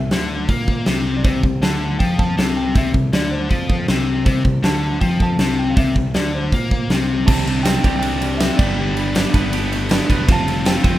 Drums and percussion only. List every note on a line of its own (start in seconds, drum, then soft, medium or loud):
0.11 snare medium
0.11 open hi-hat soft
0.49 kick medium
0.49 open hi-hat soft
0.68 kick medium
0.86 snare medium
0.86 open hi-hat soft
1.24 kick loud
1.24 open hi-hat soft
1.43 kick medium
1.63 snare loud
1.63 open hi-hat soft
2.00 kick medium
2.00 open hi-hat soft
2.19 kick medium
2.38 snare loud
2.38 open hi-hat soft
2.75 kick loud
2.75 open hi-hat soft
2.94 kick medium
3.13 snare medium
3.13 open hi-hat soft
3.50 kick medium
3.50 open hi-hat soft
3.70 kick medium
3.88 snare loud
3.88 open hi-hat soft
4.26 kick medium
4.26 open hi-hat soft
4.45 kick medium
4.64 snare loud
4.64 open hi-hat soft
5.01 kick medium
5.01 open hi-hat soft
5.20 kick medium
5.39 snare loud
5.39 open hi-hat soft
5.77 kick medium
5.77 open hi-hat soft
5.96 kick medium
6.14 snare medium
6.14 open hi-hat soft
6.52 kick medium
6.52 open hi-hat soft
6.71 kick medium
6.90 snare medium
6.90 open hi-hat soft
7.28 kick loud
7.28 crash loud
7.47 ride medium
7.65 snare loud
7.65 ride medium
7.65 tambourine loud
7.84 kick medium
7.84 ride medium
8.02 ride medium
8.22 ride medium
8.40 snare loud
8.40 ride medium
8.40 tambourine medium
8.59 kick loud
8.59 crash medium
8.97 ride medium
9.15 snare loud
9.15 ride medium
9.15 tambourine medium
9.34 kick medium
9.34 ride medium
9.53 ride medium
9.72 ride medium
9.89 snare loud
9.89 ride medium
9.89 tambourine medium
10.10 kick medium
10.10 ride medium
10.29 kick loud
10.29 ride medium
10.48 ride medium
10.65 snare loud
10.65 ride medium
10.65 tambourine medium
10.84 kick medium
10.84 ride medium